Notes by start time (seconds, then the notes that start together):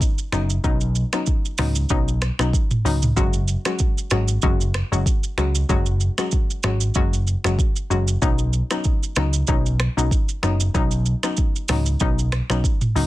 0.01 kick, shaker
0.18 shaker
0.32 F#1 F#3 B3 C#4 D#4, finger snap, cross-stick, shaker
0.50 shaker
0.64 B1 F#3 B3 C#4 D#4, kick, shaker
0.81 shaker
0.95 shaker
1.13 F#3 B3 C#4 D#4, finger snap, cross-stick, shaker
1.26 kick, shaker
1.45 shaker
1.58 C#2 F#3 B3 C#4 D#4, finger snap, cross-stick, mid tom, open hi-hat, shaker
1.75 shaker
1.89 B1 F#3 B3 C#4 D#4, kick, shaker
2.08 shaker
2.22 finger snap, cross-stick, shaker
2.39 B1 F#3 B3 C#4 D#4, finger snap, cross-stick, shaker
2.53 kick, shaker
2.71 mid tom, shaker
2.85 C#2 F#3 B3 C#4 D#4, open hi-hat, shaker
3.02 mid tom, shaker
3.16 F#1 F#3 G#3 C#4 F#4, kick, shaker
3.33 shaker
3.48 shaker
3.65 F#3 G#3 C#4 F#4, finger snap, cross-stick, shaker
3.79 kick, shaker
3.98 shaker
4.10 G#1 F#3 G#3 C#4 F#4, finger snap, cross-stick, shaker
4.28 shaker
4.42 F#1 F#3 G#3 C#4 F#4, kick, shaker
4.61 shaker
4.74 finger snap, cross-stick, shaker
4.92 F#1 F#3 G#3 C#4 F#4, shaker
5.06 kick, shaker
5.23 shaker
5.38 C#2 F#3 G#3 C#4 F#4, finger snap, cross-stick, shaker
5.55 shaker
5.69 F#1 F#3 G#3 C#4 F#4, kick, shaker
5.86 shaker
6.00 shaker
6.18 F#3 G#3 C#4 F#4, finger snap, cross-stick, shaker
6.31 kick, shaker
6.50 shaker
6.63 G#1 F#3 G#3 C#4 F#4, finger snap, cross-stick, shaker
6.81 shaker
6.95 F#1 F#3 G#3 C#4 F#4, kick, shaker
7.13 shaker
7.27 shaker
7.44 F#1 F#3 G#3 C#4 F#4, finger snap, cross-stick, shaker
7.59 kick, shaker
7.76 shaker
7.90 F#1 F#3 G#3 C#4 F#4, shaker
8.08 shaker
8.22 B1 F#3 B3 C#4 D#4, kick, shaker
8.39 shaker
8.53 shaker
8.71 F#3 B3 C#4 D#4, finger snap, cross-stick, shaker
8.84 kick, shaker
9.03 shaker
9.16 C#2 F#3 B3 C#4 D#4, finger snap, cross-stick, shaker
9.33 shaker
9.47 B1 F#3 B3 C#4 D#4, kick, shaker
9.66 shaker
9.80 finger snap, cross-stick, shaker
9.97 B1 F#3 B3 C#4 D#4, shaker
10.11 kick, shaker
10.29 shaker
10.43 F#1 F#3 B3 C#4 D#4, finger snap, cross-stick, shaker
10.60 shaker
10.74 B1 F#3 B3 C#4 D#4, kick, shaker
10.91 shaker
11.06 shaker
11.23 F#3 B3 C#4 D#4, finger snap, cross-stick, shaker
11.37 kick, shaker
11.56 shaker
11.68 C#2 F#3 B3 C#4 D#4, finger snap, cross-stick, mid tom, open hi-hat, shaker
11.86 shaker
12.00 B1 F#3 B3 C#4 D#4, kick, shaker
12.19 shaker
12.32 finger snap, cross-stick, shaker
12.50 B1 F#3 B3 C#4 D#4, finger snap, cross-stick, shaker
12.64 kick, shaker
12.81 mid tom, shaker
12.96 C#2 F#3 B3 C#4 D#4, open hi-hat, shaker